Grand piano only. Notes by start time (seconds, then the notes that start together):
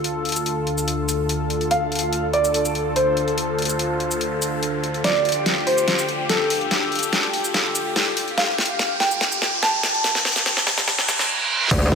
Already playing: A4
1.71 F5
2.33 D5
2.96 C5
5.04 D5
5.67 C5
6.29 A4
8.38 F5
9.00 G5
9.63 A5